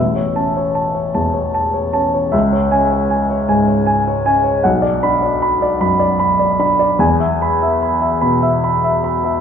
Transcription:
0.00 2.29 A1 soft
0.00 0.29 E5 soft
0.16 0.48 C#5 soft
0.36 1.00 C#4 soft
0.36 0.68 A5 soft
0.57 0.88 C#5 soft
0.75 1.07 A5 soft
0.95 1.27 C#5 soft
1.14 1.78 E2 soft
1.14 1.47 A5 soft
1.34 1.66 C#5 soft
1.54 1.86 A5 soft
1.74 2.06 C#5 soft
1.93 2.33 C#4 soft
1.93 2.25 A5 soft
2.14 2.33 C#5 soft
2.32 4.60 C#2 soft
2.32 2.64 E5 soft
2.53 2.84 C#5 soft
2.71 3.34 C#4 soft
2.71 3.03 G#5 soft
2.92 3.22 C#5 soft
3.10 3.41 G#5 soft
3.30 3.61 C#5 soft
3.48 4.10 G#2 soft
3.48 3.80 G#5 soft
3.68 3.99 C#5 soft
3.86 4.18 G#5 soft
4.08 4.38 C#5 soft
4.26 4.64 C#4 soft
4.26 4.57 G#5 soft
4.44 4.64 C#5 soft
4.64 6.97 B1 soft
4.64 4.95 F#5 soft
4.82 5.14 D5 soft
5.03 5.65 D4 soft
5.03 5.34 B5 soft
5.23 5.54 D5 soft
5.42 5.73 B5 soft
5.62 5.93 D5 soft
5.80 6.44 F#2 soft
5.80 6.13 B5 soft
6.00 6.32 D5 soft
6.19 6.52 B5 soft
6.39 6.72 D5 soft
6.59 7.00 D4 soft
6.59 6.92 B5 soft
6.79 7.00 D5 soft
6.99 9.39 E2 medium
6.99 7.33 G#5 soft
7.20 7.53 E5 soft
7.42 7.74 B5 soft
7.63 7.94 E5 soft
7.82 8.14 B5 soft
8.01 8.34 E5 soft
8.21 8.87 B2 soft
8.21 8.54 B5 soft
8.43 8.75 E5 soft
8.64 8.96 B5 soft
8.84 9.17 E5 soft
9.04 9.36 B5 soft
9.24 9.41 E5 soft

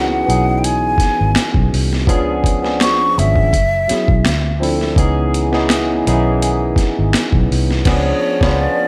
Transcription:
0.00 0.23 C#2 medium
0.00 0.26 E3 medium
0.00 0.27 B3 medium
0.00 0.28 C#4 medium
0.00 0.29 D#4 medium
0.00 0.21 F#4 medium
0.00 0.29 G#4 loud
0.00 0.59 F#5 medium
0.26 0.96 B1 medium
0.26 1.51 E3 medium
0.26 1.51 B3 medium
0.26 1.52 C#4 medium
0.26 1.52 D#4 medium
0.26 1.53 G#4 medium
0.26 closed hi-hat medium
0.58 0.66 G5 medium
0.64 1.72 G#5 medium
0.64 closed hi-hat medium
0.98 muted fingered electric bass stroke soft
0.98 kick medium
0.98 snare soft
0.98 closed hi-hat medium
1.21 1.35 G#1 medium
1.35 finger snap medium
1.35 snare medium
1.35 closed hi-hat medium
1.54 1.70 B1 medium
1.54 kick medium
1.73 2.08 C2 medium
1.73 open hi-hat soft
1.93 snare soft
2.07 3.20 C#2 loud
2.07 2.54 F3 loud
2.07 2.55 B3 loud
2.07 2.55 C#4 medium
2.07 2.55 D4 medium
2.07 2.56 G#4 loud
2.07 kick loud
2.07 closed hi-hat medium
2.44 kick medium
2.44 closed hi-hat medium
2.62 3.52 F3 medium
2.62 3.52 B3 medium
2.62 3.52 C#4 medium
2.62 3.53 D4 medium
2.62 3.53 G#4 medium
2.62 snare soft
2.80 3.20 C#6 loud
2.80 finger snap medium
2.80 snare medium
2.80 closed hi-hat medium
3.18 3.54 G#1 medium
3.18 4.62 E5 medium
3.18 closed hi-hat medium
3.36 kick medium
3.53 3.86 F#1 medium
3.53 kick medium
3.53 closed hi-hat medium
3.88 4.24 F#3 medium
3.88 4.25 B3 medium
3.88 4.25 C#4 medium
3.88 4.25 E4 medium
3.88 4.26 G#4 medium
3.88 muted fingered electric bass stroke soft
3.88 snare soft
3.88 closed hi-hat medium
4.08 4.24 B1 medium
4.08 kick medium
4.25 4.94 D2 medium
4.25 finger snap medium
4.25 snare loud
4.25 closed hi-hat medium
4.60 4.91 F3 medium
4.60 4.92 C4 medium
4.60 4.92 D4 medium
4.60 4.93 E4 medium
4.60 4.93 A4 medium
4.60 open hi-hat soft
4.81 snare soft
4.96 6.01 C#2 medium
4.96 5.44 E3 loud
4.96 5.44 B3 medium
4.96 5.44 C#4 medium
4.96 5.45 D#4 medium
4.96 5.45 G#4 loud
4.96 kick loud
4.96 closed hi-hat medium
5.34 closed hi-hat medium
5.52 5.98 E3 medium
5.52 5.98 B3 medium
5.52 5.98 C#4 medium
5.52 5.99 D#4 medium
5.52 5.99 G#4 medium
5.52 snare soft
5.69 finger snap medium
5.69 snare medium
5.69 closed hi-hat medium
6.05 6.74 B1 medium
6.05 6.12 D#3 medium
6.05 7.30 B3 medium
6.05 7.31 C#4 medium
6.05 7.31 D#4 medium
6.05 7.31 G#4 medium
6.05 closed hi-hat medium
6.12 7.33 E3 medium
6.42 closed hi-hat medium
6.76 muted fingered electric bass stroke soft
6.76 kick medium
6.76 snare soft
6.76 closed hi-hat medium
6.99 7.13 G#1 medium
7.13 finger snap medium
7.13 snare medium
7.13 closed hi-hat medium
7.33 7.49 B1 medium
7.33 kick medium
7.51 7.83 C2 medium
7.51 open hi-hat soft
7.71 snare soft
7.85 8.11 C#2 loud
7.85 8.11 F3 medium
7.85 8.11 B3 medium
7.85 8.11 C#4 medium
7.85 8.12 D4 medium
7.85 8.12 G#4 medium
7.85 kick loud
7.85 snare loud
7.85 crash medium
7.90 8.62 C#5 medium
8.41 8.66 C#2 loud
8.41 8.65 F3 loud
8.41 8.66 B3 medium
8.41 8.66 C#4 medium
8.41 8.67 D4 medium
8.41 8.67 F4 medium
8.41 kick loud
8.41 snare loud
8.61 8.88 D5 medium

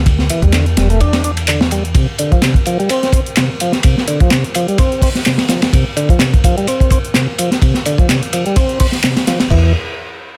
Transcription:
0.00 0.26 D2 medium
0.06 kick loud
0.06 closed hi-hat soft
0.06 ride medium
0.19 snare medium
0.30 0.42 E3 medium
0.30 closed hi-hat medium
0.30 ride medium
0.42 0.74 E2 medium
0.42 0.52 G3 medium
0.42 kick medium
0.42 closed hi-hat soft
0.53 0.66 D3 medium
0.53 snare loud
0.53 clap loud
0.53 closed hi-hat soft
0.53 ride medium
0.66 closed hi-hat soft
0.77 1.00 E1 medium
0.77 0.89 G3 medium
0.77 snare loud
0.77 closed hi-hat medium
0.77 ride medium
0.90 1.00 A3 loud
0.90 closed hi-hat soft
1.00 1.92 E2 medium
1.00 1.23 D4 loud
1.00 closed hi-hat soft
1.00 ride medium
1.13 snare medium
1.13 closed hi-hat soft
1.13 ride medium
1.24 1.31 D4 medium
1.24 closed hi-hat medium
1.37 closed hi-hat soft
1.37 ride medium
1.48 1.60 D3 medium
1.48 clap loud
1.48 closed hi-hat soft
1.48 ride medium
1.61 snare loud
1.71 1.83 G3 medium
1.71 closed hi-hat medium
1.71 ride medium
1.85 closed hi-hat soft
1.95 2.07 C3 medium
1.95 kick loud
1.95 closed hi-hat soft
1.95 ride loud
2.18 2.31 D3 medium
2.18 closed hi-hat medium
2.18 ride medium
2.32 2.41 F3 medium
2.32 kick medium
2.32 closed hi-hat soft
2.42 2.55 C3 medium
2.42 snare loud
2.42 clap loud
2.42 closed hi-hat soft
2.42 ride medium
2.54 kick medium
2.54 closed hi-hat soft
2.65 2.78 F3 medium
2.65 closed hi-hat medium
2.65 ride medium
2.79 2.89 G3 medium
2.79 closed hi-hat soft
2.89 3.12 C4 loud
2.89 closed hi-hat soft
2.89 ride medium
3.03 snare soft
3.03 closed hi-hat soft
3.12 3.20 C4 medium
3.12 kick medium
3.12 closed hi-hat medium
3.12 ride medium
3.26 closed hi-hat soft
3.37 3.49 C3 medium
3.37 snare loud
3.37 clap loud
3.37 closed hi-hat soft
3.37 ride medium
3.60 3.72 F3 medium
3.60 closed hi-hat medium
3.60 ride medium
3.72 snare medium
3.72 closed hi-hat soft
3.83 3.96 C3 medium
3.83 kick loud
3.83 closed hi-hat soft
3.83 ride loud
3.98 snare medium
4.08 4.20 D3 medium
4.08 closed hi-hat medium
4.08 ride medium
4.20 4.30 F3 medium
4.20 kick loud
4.20 closed hi-hat soft
4.31 4.44 C3 medium
4.31 snare loud
4.31 clap loud
4.31 closed hi-hat soft
4.31 ride medium
4.44 closed hi-hat soft
4.54 4.67 F3 medium
4.54 closed hi-hat medium
4.54 ride medium
4.68 4.78 G3 loud
4.68 closed hi-hat soft
4.78 5.01 C4 loud
4.78 kick loud
4.78 closed hi-hat soft
4.78 ride medium
4.92 closed hi-hat soft
5.02 5.09 C4 medium
5.02 kick medium
5.02 closed hi-hat medium
5.02 open hi-hat medium
5.15 snare medium
5.15 closed hi-hat soft
5.25 5.38 C3 medium
5.25 snare loud
5.25 clap loud
5.25 closed hi-hat soft
5.25 ride medium
5.38 snare medium
5.38 ride medium
5.48 5.61 F3 medium
5.48 snare loud
5.48 closed hi-hat medium
5.48 ride medium
5.62 snare loud
5.62 closed hi-hat soft
5.62 ride medium
5.73 5.84 C3 medium
5.73 kick loud
5.73 closed hi-hat soft
5.73 ride loud
5.97 6.09 D3 medium
5.97 closed hi-hat medium
5.97 ride medium
6.09 6.19 F3 medium
6.09 kick medium
6.09 closed hi-hat soft
6.19 6.33 C3 medium
6.19 snare loud
6.19 clap loud
6.19 closed hi-hat soft
6.19 ride medium
6.34 kick loud
6.34 closed hi-hat soft
6.44 6.56 F3 medium
6.44 kick loud
6.44 closed hi-hat medium
6.44 ride medium
6.57 6.67 G3 medium
6.57 closed hi-hat soft
6.67 6.90 C4 loud
6.67 closed hi-hat soft
6.67 ride medium
6.80 kick medium
6.80 closed hi-hat soft
6.90 6.98 C4 medium
6.90 kick medium
6.90 closed hi-hat medium
6.90 ride medium
7.05 closed hi-hat soft
7.14 7.27 C3 medium
7.14 snare loud
7.14 clap loud
7.14 closed hi-hat soft
7.14 ride medium
7.38 7.50 F3 medium
7.38 closed hi-hat medium
7.38 ride medium
7.52 snare medium
7.52 closed hi-hat soft
7.62 7.74 C3 medium
7.62 kick loud
7.62 closed hi-hat soft
7.62 ride medium
7.74 snare medium
7.74 closed hi-hat soft
7.85 7.98 D3 medium
7.85 closed hi-hat medium
7.85 ride medium
7.98 8.08 F3 medium
7.98 kick loud
7.98 closed hi-hat soft
8.09 8.21 C3 medium
8.09 snare loud
8.09 clap loud
8.09 closed hi-hat soft
8.09 ride medium
8.23 closed hi-hat soft
8.33 8.45 F3 medium
8.33 closed hi-hat medium
8.33 ride medium
8.46 8.56 G3 medium
8.46 closed hi-hat soft
8.56 8.79 C4 loud
8.56 kick loud
8.56 closed hi-hat soft
8.56 ride medium
8.69 closed hi-hat soft
8.80 8.87 C4 medium
8.80 kick loud
8.80 closed hi-hat medium
8.80 open hi-hat medium
8.92 snare soft
8.92 closed hi-hat soft
9.03 9.16 C3 medium
9.03 snare loud
9.03 clap loud
9.03 closed hi-hat soft
9.03 ride medium
9.17 snare loud
9.17 closed hi-hat soft
9.17 ride medium
9.27 9.39 F3 medium
9.27 snare medium
9.27 closed hi-hat medium
9.27 ride medium
9.40 snare loud
9.40 closed hi-hat soft
9.40 ride medium
9.50 9.73 E2 medium
9.50 9.73 E3 medium
9.50 kick loud
9.50 crash medium

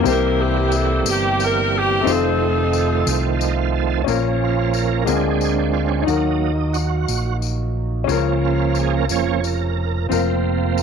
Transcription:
0.00 2.01 E3 medium
0.00 2.01 G3 medium
0.00 1.99 A#3 medium
0.00 2.01 A#3 medium
0.00 2.00 C4 medium
0.00 2.01 C4 medium
0.00 2.01 E4 medium
0.00 2.01 G4 medium
0.04 1.06 C2 loud
0.04 1.01 C3 medium
0.04 2.02 G4 medium
0.04 2.03 C5 medium
0.04 tambourine medium
0.09 1.03 E4 medium
0.09 0.40 G4 medium
0.09 0.38 A#4 medium
0.41 0.73 G4 medium
0.72 1.07 A4 medium
0.72 tambourine medium
1.06 2.02 G1 loud
1.06 1.41 G4 medium
1.06 tambourine medium
1.40 tambourine medium
1.44 1.75 A#4 medium
1.77 2.08 G4 loud
2.01 2.11 F#3 medium
2.01 4.00 A3 medium
2.01 4.01 C4 medium
2.01 4.02 C4 medium
2.01 4.02 D#4 medium
2.01 4.02 F4 medium
2.05 3.02 F1 loud
2.05 4.02 D#3 medium
2.05 4.02 F3 medium
2.05 4.03 F4 medium
2.05 4.04 C5 medium
2.05 tambourine medium
2.11 4.05 A3 medium
2.11 3.38 C4 medium
2.11 3.38 D#4 medium
2.11 3.42 A4 medium
2.73 tambourine medium
3.06 4.03 C2 loud
3.06 tambourine loud
3.39 3.55 D#5 medium
3.39 tambourine medium
3.55 3.71 F5 medium
3.74 4.04 A5 medium
4.04 5.03 A#1 medium
4.04 5.03 A#2 medium
4.04 5.05 F3 medium
4.04 5.04 F3 soft
4.04 8.04 A#3 medium
4.04 5.04 A#3 soft
4.04 5.06 C#4 medium
4.04 5.05 C#4 medium
4.04 5.05 F4 medium
4.04 5.06 F4 medium
4.04 5.07 A#4 medium
4.04 tambourine medium
4.08 5.04 C#4 soft
4.44 4.73 F4 medium
4.74 5.09 A#4 medium
4.74 tambourine soft
5.04 6.04 D2 medium
5.04 6.03 D3 medium
5.04 6.06 G#3 medium
5.04 6.04 G#3 soft
5.04 6.07 A#3 medium
5.04 5.13 C4 soft
5.04 6.04 C4 soft
5.04 6.06 D4 soft
5.04 6.04 D4 medium
5.04 6.06 F4 medium
5.04 6.08 F4 soft
5.04 6.08 A#4 medium
5.04 tambourine medium
5.09 6.10 D4 medium
5.09 5.39 G#4 medium
5.40 5.55 G#4 medium
5.40 tambourine medium
5.73 5.89 F4 medium
5.89 6.05 C#4 medium
6.03 7.04 D#3 medium
6.03 6.52 F#3 soft
6.03 8.02 D#4 medium
6.07 7.04 D#2 loud
6.07 8.07 F#3 medium
6.07 6.52 A#3 soft
6.07 6.77 D#4 medium
6.07 8.07 D#4 medium
6.07 8.04 F#4 medium
6.07 8.07 F#4 medium
6.07 8.06 A#4 medium
6.07 tambourine medium
6.73 7.37 F#4 medium
6.73 tambourine soft
7.08 8.05 A#1 medium
7.08 tambourine medium
7.42 tambourine soft
8.04 9.05 C#3 medium
8.04 9.05 F3 medium
8.04 9.05 A#3 soft
8.04 10.04 C#4 medium
8.04 10.06 F4 medium
8.09 9.06 C#2 medium
8.09 10.83 F3 medium
8.09 10.83 A#3 medium
8.09 9.06 C#4 medium
8.09 10.09 C#4 medium
8.09 10.08 F4 medium
8.09 10.08 A#4 medium
8.09 tambourine medium
8.45 8.78 F4 medium
8.75 tambourine soft
8.79 8.95 G#4 medium
8.96 9.12 A#4 medium
9.09 10.06 F1 medium
9.09 9.40 F3 soft
9.09 9.40 A#3 soft
9.09 9.41 C#4 soft
9.09 9.45 C#5 loud
9.09 tambourine medium
9.44 10.07 A#4 medium
9.44 tambourine medium
10.09 10.83 F1 loud
10.09 10.83 F3 soft
10.09 10.83 A#3 soft
10.09 10.83 C4 medium
10.09 10.83 F4 medium
10.09 10.83 A#4 medium
10.09 tambourine medium
10.77 10.83 A#4 medium
10.77 tambourine medium

